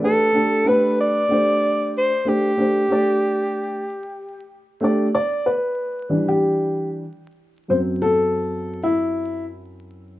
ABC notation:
X:1
M:4/4
L:1/16
Q:"Swing 16ths" 1/4=94
K:Em
V:1 name="Alto saxophone"
A4 B2 d6 c2 G2- | G12 z4 | z16 | z16 |]
V:2 name="Upright piano"
[A,DGB]2 [A,DGA]2 [A,DGB]4 [A,DGc]4 z2 [A,DGc]2 | [A,DGc]2 [A,DGd]6 z6 [A,DGd]2 | d2 B4- B G4 z4 z | c2 A4- A E4 z4 z |]
V:3 name="Upright piano" clef=bass
z16 | z16 | z6 [E,G,D]6 z4 | [F,,F,C]16 |]